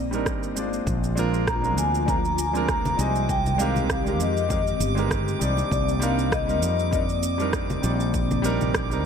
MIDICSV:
0, 0, Header, 1, 7, 480
1, 0, Start_track
1, 0, Key_signature, -3, "minor"
1, 0, Tempo, 606061
1, 686, Time_signature, 4, 2, 24, 8
1, 7172, End_track
2, 0, Start_track
2, 0, Title_t, "Synth texture"
2, 0, Program_c, 0, 99
2, 679, Note_on_c, 0, 86, 87
2, 7172, Note_off_c, 0, 86, 0
2, 7172, End_track
3, 0, Start_track
3, 0, Title_t, "Vibraphone"
3, 0, Program_c, 1, 11
3, 0, Note_on_c, 1, 74, 78
3, 179, Note_off_c, 1, 74, 0
3, 1169, Note_on_c, 1, 82, 102
3, 1412, Note_on_c, 1, 80, 106
3, 1415, Note_off_c, 1, 82, 0
3, 1651, Note_on_c, 1, 82, 103
3, 1656, Note_off_c, 1, 80, 0
3, 1826, Note_off_c, 1, 82, 0
3, 1839, Note_on_c, 1, 82, 71
3, 1887, Note_off_c, 1, 82, 0
3, 1889, Note_on_c, 1, 80, 93
3, 2133, Note_on_c, 1, 82, 99
3, 2135, Note_off_c, 1, 80, 0
3, 2373, Note_on_c, 1, 80, 92
3, 2377, Note_off_c, 1, 82, 0
3, 2614, Note_on_c, 1, 79, 97
3, 2617, Note_off_c, 1, 80, 0
3, 2851, Note_on_c, 1, 77, 101
3, 2857, Note_off_c, 1, 79, 0
3, 3334, Note_on_c, 1, 75, 78
3, 3343, Note_off_c, 1, 77, 0
3, 3778, Note_off_c, 1, 75, 0
3, 4535, Note_on_c, 1, 74, 99
3, 4641, Note_off_c, 1, 74, 0
3, 4775, Note_on_c, 1, 77, 103
3, 5014, Note_on_c, 1, 75, 107
3, 5018, Note_off_c, 1, 77, 0
3, 5496, Note_on_c, 1, 74, 82
3, 5504, Note_off_c, 1, 75, 0
3, 7172, Note_off_c, 1, 74, 0
3, 7172, End_track
4, 0, Start_track
4, 0, Title_t, "Grand piano"
4, 0, Program_c, 2, 0
4, 87, Note_on_c, 2, 55, 83
4, 96, Note_on_c, 2, 60, 72
4, 105, Note_on_c, 2, 62, 73
4, 113, Note_on_c, 2, 63, 75
4, 117, Note_on_c, 2, 70, 84
4, 415, Note_off_c, 2, 55, 0
4, 419, Note_off_c, 2, 60, 0
4, 423, Note_off_c, 2, 62, 0
4, 427, Note_off_c, 2, 63, 0
4, 429, Note_off_c, 2, 70, 0
4, 439, Note_on_c, 2, 56, 73
4, 446, Note_on_c, 2, 60, 70
4, 454, Note_on_c, 2, 62, 69
4, 462, Note_on_c, 2, 65, 68
4, 468, Note_on_c, 2, 74, 83
4, 897, Note_off_c, 2, 56, 0
4, 901, Note_off_c, 2, 60, 0
4, 904, Note_off_c, 2, 62, 0
4, 908, Note_off_c, 2, 65, 0
4, 911, Note_off_c, 2, 74, 0
4, 914, Note_on_c, 2, 56, 86
4, 922, Note_on_c, 2, 60, 86
4, 929, Note_on_c, 2, 62, 81
4, 938, Note_on_c, 2, 65, 84
4, 944, Note_on_c, 2, 70, 107
4, 1261, Note_off_c, 2, 56, 0
4, 1265, Note_off_c, 2, 60, 0
4, 1268, Note_off_c, 2, 62, 0
4, 1273, Note_off_c, 2, 65, 0
4, 1276, Note_off_c, 2, 70, 0
4, 1283, Note_on_c, 2, 56, 75
4, 1290, Note_on_c, 2, 60, 68
4, 1298, Note_on_c, 2, 62, 70
4, 1305, Note_on_c, 2, 65, 72
4, 1311, Note_on_c, 2, 70, 81
4, 1612, Note_off_c, 2, 56, 0
4, 1616, Note_off_c, 2, 60, 0
4, 1620, Note_off_c, 2, 62, 0
4, 1623, Note_off_c, 2, 65, 0
4, 1626, Note_off_c, 2, 70, 0
4, 1633, Note_on_c, 2, 56, 75
4, 1641, Note_on_c, 2, 60, 70
4, 1647, Note_on_c, 2, 62, 68
4, 1654, Note_on_c, 2, 65, 72
4, 1662, Note_on_c, 2, 70, 79
4, 1704, Note_off_c, 2, 56, 0
4, 1708, Note_off_c, 2, 60, 0
4, 1711, Note_off_c, 2, 62, 0
4, 1714, Note_off_c, 2, 65, 0
4, 1718, Note_off_c, 2, 70, 0
4, 2007, Note_on_c, 2, 56, 80
4, 2014, Note_on_c, 2, 60, 73
4, 2023, Note_on_c, 2, 62, 75
4, 2029, Note_on_c, 2, 65, 78
4, 2036, Note_on_c, 2, 70, 96
4, 2334, Note_off_c, 2, 56, 0
4, 2338, Note_off_c, 2, 60, 0
4, 2343, Note_off_c, 2, 62, 0
4, 2345, Note_off_c, 2, 65, 0
4, 2349, Note_off_c, 2, 70, 0
4, 2354, Note_on_c, 2, 56, 78
4, 2360, Note_on_c, 2, 60, 74
4, 2369, Note_on_c, 2, 63, 70
4, 2375, Note_on_c, 2, 55, 67
4, 2383, Note_on_c, 2, 75, 85
4, 2815, Note_off_c, 2, 56, 0
4, 2818, Note_off_c, 2, 60, 0
4, 2822, Note_off_c, 2, 63, 0
4, 2825, Note_off_c, 2, 55, 0
4, 2829, Note_off_c, 2, 75, 0
4, 2836, Note_on_c, 2, 56, 93
4, 2843, Note_on_c, 2, 60, 91
4, 2849, Note_on_c, 2, 63, 86
4, 2858, Note_on_c, 2, 67, 82
4, 2865, Note_on_c, 2, 70, 102
4, 3182, Note_off_c, 2, 56, 0
4, 3186, Note_off_c, 2, 60, 0
4, 3189, Note_off_c, 2, 63, 0
4, 3193, Note_off_c, 2, 67, 0
4, 3196, Note_off_c, 2, 70, 0
4, 3204, Note_on_c, 2, 56, 76
4, 3211, Note_on_c, 2, 60, 69
4, 3219, Note_on_c, 2, 63, 69
4, 3227, Note_on_c, 2, 67, 73
4, 3234, Note_on_c, 2, 70, 85
4, 3533, Note_off_c, 2, 56, 0
4, 3537, Note_off_c, 2, 60, 0
4, 3540, Note_off_c, 2, 63, 0
4, 3544, Note_off_c, 2, 67, 0
4, 3548, Note_off_c, 2, 70, 0
4, 3554, Note_on_c, 2, 56, 78
4, 3557, Note_on_c, 2, 60, 73
4, 3565, Note_on_c, 2, 63, 68
4, 3574, Note_on_c, 2, 67, 67
4, 3581, Note_on_c, 2, 70, 83
4, 3624, Note_off_c, 2, 56, 0
4, 3626, Note_off_c, 2, 60, 0
4, 3630, Note_off_c, 2, 63, 0
4, 3634, Note_off_c, 2, 67, 0
4, 3638, Note_off_c, 2, 70, 0
4, 3921, Note_on_c, 2, 56, 85
4, 3929, Note_on_c, 2, 60, 77
4, 3938, Note_on_c, 2, 63, 75
4, 3944, Note_on_c, 2, 67, 81
4, 3952, Note_on_c, 2, 70, 90
4, 4251, Note_off_c, 2, 56, 0
4, 4256, Note_off_c, 2, 60, 0
4, 4260, Note_off_c, 2, 63, 0
4, 4263, Note_off_c, 2, 67, 0
4, 4267, Note_off_c, 2, 70, 0
4, 4269, Note_on_c, 2, 55, 74
4, 4276, Note_on_c, 2, 60, 74
4, 4284, Note_on_c, 2, 62, 69
4, 4292, Note_on_c, 2, 63, 71
4, 4299, Note_on_c, 2, 74, 85
4, 4732, Note_off_c, 2, 55, 0
4, 4735, Note_off_c, 2, 60, 0
4, 4739, Note_off_c, 2, 62, 0
4, 4743, Note_off_c, 2, 63, 0
4, 4747, Note_off_c, 2, 74, 0
4, 4749, Note_on_c, 2, 55, 91
4, 4757, Note_on_c, 2, 60, 83
4, 4765, Note_on_c, 2, 62, 85
4, 4771, Note_on_c, 2, 63, 84
4, 4778, Note_on_c, 2, 70, 98
4, 5098, Note_off_c, 2, 55, 0
4, 5103, Note_off_c, 2, 60, 0
4, 5106, Note_off_c, 2, 62, 0
4, 5110, Note_off_c, 2, 63, 0
4, 5113, Note_off_c, 2, 70, 0
4, 5121, Note_on_c, 2, 55, 77
4, 5129, Note_on_c, 2, 60, 73
4, 5136, Note_on_c, 2, 58, 74
4, 5145, Note_on_c, 2, 63, 72
4, 5152, Note_on_c, 2, 70, 87
4, 5451, Note_off_c, 2, 55, 0
4, 5455, Note_off_c, 2, 60, 0
4, 5459, Note_off_c, 2, 58, 0
4, 5463, Note_off_c, 2, 63, 0
4, 5467, Note_off_c, 2, 70, 0
4, 5473, Note_on_c, 2, 55, 78
4, 5480, Note_on_c, 2, 60, 68
4, 5487, Note_on_c, 2, 62, 70
4, 5494, Note_on_c, 2, 63, 70
4, 5503, Note_on_c, 2, 70, 84
4, 5544, Note_off_c, 2, 55, 0
4, 5547, Note_off_c, 2, 60, 0
4, 5551, Note_off_c, 2, 62, 0
4, 5554, Note_off_c, 2, 63, 0
4, 5558, Note_off_c, 2, 70, 0
4, 5845, Note_on_c, 2, 55, 83
4, 5852, Note_on_c, 2, 60, 76
4, 5861, Note_on_c, 2, 62, 77
4, 5868, Note_on_c, 2, 63, 77
4, 5874, Note_on_c, 2, 70, 88
4, 6173, Note_off_c, 2, 55, 0
4, 6177, Note_off_c, 2, 60, 0
4, 6181, Note_off_c, 2, 62, 0
4, 6185, Note_off_c, 2, 63, 0
4, 6188, Note_off_c, 2, 70, 0
4, 6192, Note_on_c, 2, 55, 77
4, 6201, Note_on_c, 2, 60, 70
4, 6208, Note_on_c, 2, 62, 72
4, 6214, Note_on_c, 2, 63, 71
4, 6223, Note_on_c, 2, 74, 82
4, 6654, Note_off_c, 2, 55, 0
4, 6658, Note_off_c, 2, 60, 0
4, 6661, Note_off_c, 2, 62, 0
4, 6664, Note_off_c, 2, 63, 0
4, 6669, Note_off_c, 2, 74, 0
4, 6669, Note_on_c, 2, 55, 101
4, 6677, Note_on_c, 2, 60, 89
4, 6685, Note_on_c, 2, 62, 85
4, 6690, Note_on_c, 2, 63, 87
4, 6698, Note_on_c, 2, 70, 112
4, 7019, Note_off_c, 2, 55, 0
4, 7023, Note_off_c, 2, 60, 0
4, 7027, Note_off_c, 2, 62, 0
4, 7029, Note_off_c, 2, 63, 0
4, 7033, Note_off_c, 2, 70, 0
4, 7047, Note_on_c, 2, 55, 77
4, 7055, Note_on_c, 2, 60, 73
4, 7063, Note_on_c, 2, 62, 72
4, 7069, Note_on_c, 2, 63, 74
4, 7077, Note_on_c, 2, 70, 89
4, 7172, Note_off_c, 2, 55, 0
4, 7172, Note_off_c, 2, 60, 0
4, 7172, Note_off_c, 2, 62, 0
4, 7172, Note_off_c, 2, 63, 0
4, 7172, Note_off_c, 2, 70, 0
4, 7172, End_track
5, 0, Start_track
5, 0, Title_t, "Analog synth pad"
5, 0, Program_c, 3, 89
5, 0, Note_on_c, 3, 58, 73
5, 0, Note_on_c, 3, 60, 77
5, 654, Note_off_c, 3, 60, 0
5, 685, Note_on_c, 3, 53, 72
5, 687, Note_on_c, 3, 65, 85
5, 2575, Note_off_c, 3, 58, 0
5, 2587, Note_off_c, 3, 53, 0
5, 2587, Note_off_c, 3, 65, 0
5, 2606, Note_on_c, 3, 51, 82
5, 2606, Note_on_c, 3, 60, 69
5, 2606, Note_on_c, 3, 67, 83
5, 2607, Note_on_c, 3, 56, 74
5, 4269, Note_off_c, 3, 51, 0
5, 4269, Note_off_c, 3, 67, 0
5, 4270, Note_off_c, 3, 56, 0
5, 4270, Note_off_c, 3, 60, 0
5, 4290, Note_on_c, 3, 60, 70
5, 4291, Note_on_c, 3, 58, 70
5, 7172, Note_off_c, 3, 58, 0
5, 7172, Note_off_c, 3, 60, 0
5, 7172, End_track
6, 0, Start_track
6, 0, Title_t, "Fretless electric bass"
6, 0, Program_c, 4, 35
6, 0, Note_on_c, 4, 34, 75
6, 207, Note_off_c, 4, 34, 0
6, 207, Note_on_c, 4, 31, 89
6, 624, Note_off_c, 4, 31, 0
6, 687, Note_on_c, 4, 34, 104
6, 1407, Note_off_c, 4, 34, 0
6, 1407, Note_on_c, 4, 38, 84
6, 2304, Note_off_c, 4, 38, 0
6, 2366, Note_on_c, 4, 36, 102
6, 3327, Note_off_c, 4, 36, 0
6, 3327, Note_on_c, 4, 41, 87
6, 3743, Note_off_c, 4, 41, 0
6, 3803, Note_on_c, 4, 31, 97
6, 4222, Note_off_c, 4, 31, 0
6, 4287, Note_on_c, 4, 36, 75
6, 4448, Note_off_c, 4, 36, 0
6, 4527, Note_on_c, 4, 36, 102
6, 5245, Note_off_c, 4, 36, 0
6, 5245, Note_on_c, 4, 41, 85
6, 6142, Note_off_c, 4, 41, 0
6, 6208, Note_on_c, 4, 34, 98
6, 7167, Note_off_c, 4, 34, 0
6, 7172, End_track
7, 0, Start_track
7, 0, Title_t, "Drums"
7, 103, Note_on_c, 9, 82, 35
7, 182, Note_off_c, 9, 82, 0
7, 207, Note_on_c, 9, 36, 111
7, 208, Note_on_c, 9, 37, 90
7, 209, Note_on_c, 9, 82, 43
7, 286, Note_off_c, 9, 36, 0
7, 287, Note_off_c, 9, 37, 0
7, 288, Note_off_c, 9, 82, 0
7, 341, Note_on_c, 9, 82, 32
7, 420, Note_off_c, 9, 82, 0
7, 449, Note_on_c, 9, 82, 80
7, 528, Note_off_c, 9, 82, 0
7, 581, Note_on_c, 9, 82, 32
7, 660, Note_off_c, 9, 82, 0
7, 688, Note_on_c, 9, 36, 100
7, 688, Note_on_c, 9, 82, 48
7, 767, Note_off_c, 9, 36, 0
7, 768, Note_off_c, 9, 82, 0
7, 822, Note_on_c, 9, 82, 30
7, 901, Note_off_c, 9, 82, 0
7, 928, Note_on_c, 9, 82, 76
7, 1007, Note_off_c, 9, 82, 0
7, 1061, Note_on_c, 9, 82, 30
7, 1140, Note_off_c, 9, 82, 0
7, 1168, Note_on_c, 9, 36, 105
7, 1168, Note_on_c, 9, 37, 100
7, 1169, Note_on_c, 9, 82, 44
7, 1247, Note_off_c, 9, 36, 0
7, 1248, Note_off_c, 9, 37, 0
7, 1248, Note_off_c, 9, 82, 0
7, 1301, Note_on_c, 9, 82, 33
7, 1380, Note_off_c, 9, 82, 0
7, 1408, Note_on_c, 9, 63, 68
7, 1409, Note_on_c, 9, 82, 84
7, 1487, Note_off_c, 9, 63, 0
7, 1488, Note_off_c, 9, 82, 0
7, 1542, Note_on_c, 9, 82, 34
7, 1621, Note_off_c, 9, 82, 0
7, 1648, Note_on_c, 9, 36, 111
7, 1650, Note_on_c, 9, 82, 42
7, 1727, Note_off_c, 9, 36, 0
7, 1729, Note_off_c, 9, 82, 0
7, 1782, Note_on_c, 9, 82, 31
7, 1861, Note_off_c, 9, 82, 0
7, 1888, Note_on_c, 9, 60, 34
7, 1888, Note_on_c, 9, 82, 84
7, 1967, Note_off_c, 9, 60, 0
7, 1967, Note_off_c, 9, 82, 0
7, 2021, Note_on_c, 9, 82, 35
7, 2100, Note_off_c, 9, 82, 0
7, 2127, Note_on_c, 9, 36, 109
7, 2127, Note_on_c, 9, 37, 92
7, 2127, Note_on_c, 9, 82, 42
7, 2206, Note_off_c, 9, 37, 0
7, 2207, Note_off_c, 9, 36, 0
7, 2207, Note_off_c, 9, 82, 0
7, 2261, Note_on_c, 9, 64, 87
7, 2262, Note_on_c, 9, 82, 30
7, 2340, Note_off_c, 9, 64, 0
7, 2341, Note_off_c, 9, 82, 0
7, 2369, Note_on_c, 9, 82, 75
7, 2448, Note_off_c, 9, 82, 0
7, 2499, Note_on_c, 9, 82, 33
7, 2579, Note_off_c, 9, 82, 0
7, 2607, Note_on_c, 9, 36, 95
7, 2609, Note_on_c, 9, 82, 44
7, 2686, Note_off_c, 9, 36, 0
7, 2688, Note_off_c, 9, 82, 0
7, 2742, Note_on_c, 9, 82, 29
7, 2744, Note_on_c, 9, 64, 71
7, 2821, Note_off_c, 9, 82, 0
7, 2823, Note_off_c, 9, 64, 0
7, 2847, Note_on_c, 9, 82, 72
7, 2926, Note_off_c, 9, 82, 0
7, 2978, Note_on_c, 9, 64, 69
7, 2982, Note_on_c, 9, 82, 30
7, 3057, Note_off_c, 9, 64, 0
7, 3061, Note_off_c, 9, 82, 0
7, 3087, Note_on_c, 9, 36, 110
7, 3087, Note_on_c, 9, 37, 98
7, 3087, Note_on_c, 9, 82, 43
7, 3166, Note_off_c, 9, 36, 0
7, 3166, Note_off_c, 9, 37, 0
7, 3166, Note_off_c, 9, 82, 0
7, 3220, Note_on_c, 9, 82, 32
7, 3299, Note_off_c, 9, 82, 0
7, 3325, Note_on_c, 9, 63, 60
7, 3327, Note_on_c, 9, 82, 74
7, 3404, Note_off_c, 9, 63, 0
7, 3407, Note_off_c, 9, 82, 0
7, 3460, Note_on_c, 9, 82, 33
7, 3540, Note_off_c, 9, 82, 0
7, 3566, Note_on_c, 9, 36, 100
7, 3567, Note_on_c, 9, 82, 43
7, 3645, Note_off_c, 9, 36, 0
7, 3646, Note_off_c, 9, 82, 0
7, 3700, Note_on_c, 9, 82, 30
7, 3779, Note_off_c, 9, 82, 0
7, 3805, Note_on_c, 9, 60, 36
7, 3807, Note_on_c, 9, 82, 77
7, 3884, Note_off_c, 9, 60, 0
7, 3886, Note_off_c, 9, 82, 0
7, 3939, Note_on_c, 9, 82, 31
7, 4018, Note_off_c, 9, 82, 0
7, 4046, Note_on_c, 9, 36, 102
7, 4048, Note_on_c, 9, 37, 87
7, 4048, Note_on_c, 9, 82, 41
7, 4125, Note_off_c, 9, 36, 0
7, 4127, Note_off_c, 9, 37, 0
7, 4127, Note_off_c, 9, 82, 0
7, 4183, Note_on_c, 9, 82, 31
7, 4262, Note_off_c, 9, 82, 0
7, 4286, Note_on_c, 9, 63, 85
7, 4288, Note_on_c, 9, 82, 68
7, 4365, Note_off_c, 9, 63, 0
7, 4367, Note_off_c, 9, 82, 0
7, 4413, Note_on_c, 9, 60, 63
7, 4423, Note_on_c, 9, 82, 30
7, 4492, Note_off_c, 9, 60, 0
7, 4502, Note_off_c, 9, 82, 0
7, 4526, Note_on_c, 9, 36, 98
7, 4531, Note_on_c, 9, 82, 43
7, 4605, Note_off_c, 9, 36, 0
7, 4610, Note_off_c, 9, 82, 0
7, 4662, Note_on_c, 9, 82, 31
7, 4741, Note_off_c, 9, 82, 0
7, 4768, Note_on_c, 9, 82, 78
7, 4847, Note_off_c, 9, 82, 0
7, 4901, Note_on_c, 9, 82, 30
7, 4980, Note_off_c, 9, 82, 0
7, 5006, Note_on_c, 9, 36, 107
7, 5008, Note_on_c, 9, 37, 99
7, 5009, Note_on_c, 9, 82, 45
7, 5085, Note_off_c, 9, 36, 0
7, 5087, Note_off_c, 9, 37, 0
7, 5088, Note_off_c, 9, 82, 0
7, 5141, Note_on_c, 9, 82, 31
7, 5220, Note_off_c, 9, 82, 0
7, 5245, Note_on_c, 9, 63, 62
7, 5247, Note_on_c, 9, 82, 76
7, 5324, Note_off_c, 9, 63, 0
7, 5327, Note_off_c, 9, 82, 0
7, 5381, Note_on_c, 9, 82, 33
7, 5460, Note_off_c, 9, 82, 0
7, 5486, Note_on_c, 9, 36, 99
7, 5488, Note_on_c, 9, 82, 44
7, 5565, Note_off_c, 9, 36, 0
7, 5567, Note_off_c, 9, 82, 0
7, 5618, Note_on_c, 9, 82, 29
7, 5697, Note_off_c, 9, 82, 0
7, 5723, Note_on_c, 9, 60, 33
7, 5726, Note_on_c, 9, 82, 75
7, 5802, Note_off_c, 9, 60, 0
7, 5805, Note_off_c, 9, 82, 0
7, 5858, Note_on_c, 9, 82, 33
7, 5938, Note_off_c, 9, 82, 0
7, 5965, Note_on_c, 9, 37, 93
7, 5965, Note_on_c, 9, 82, 41
7, 5966, Note_on_c, 9, 36, 100
7, 6044, Note_off_c, 9, 37, 0
7, 6045, Note_off_c, 9, 36, 0
7, 6045, Note_off_c, 9, 82, 0
7, 6098, Note_on_c, 9, 64, 78
7, 6098, Note_on_c, 9, 82, 28
7, 6177, Note_off_c, 9, 82, 0
7, 6178, Note_off_c, 9, 64, 0
7, 6205, Note_on_c, 9, 82, 72
7, 6284, Note_off_c, 9, 82, 0
7, 6338, Note_on_c, 9, 82, 30
7, 6418, Note_off_c, 9, 82, 0
7, 6446, Note_on_c, 9, 82, 42
7, 6447, Note_on_c, 9, 36, 96
7, 6525, Note_off_c, 9, 82, 0
7, 6526, Note_off_c, 9, 36, 0
7, 6580, Note_on_c, 9, 82, 30
7, 6581, Note_on_c, 9, 60, 41
7, 6581, Note_on_c, 9, 64, 83
7, 6659, Note_off_c, 9, 82, 0
7, 6660, Note_off_c, 9, 60, 0
7, 6660, Note_off_c, 9, 64, 0
7, 6686, Note_on_c, 9, 82, 82
7, 6765, Note_off_c, 9, 82, 0
7, 6817, Note_on_c, 9, 64, 75
7, 6819, Note_on_c, 9, 82, 31
7, 6896, Note_off_c, 9, 64, 0
7, 6898, Note_off_c, 9, 82, 0
7, 6926, Note_on_c, 9, 37, 108
7, 6927, Note_on_c, 9, 36, 101
7, 6927, Note_on_c, 9, 82, 42
7, 7005, Note_off_c, 9, 37, 0
7, 7006, Note_off_c, 9, 36, 0
7, 7006, Note_off_c, 9, 82, 0
7, 7060, Note_on_c, 9, 82, 30
7, 7139, Note_off_c, 9, 82, 0
7, 7172, End_track
0, 0, End_of_file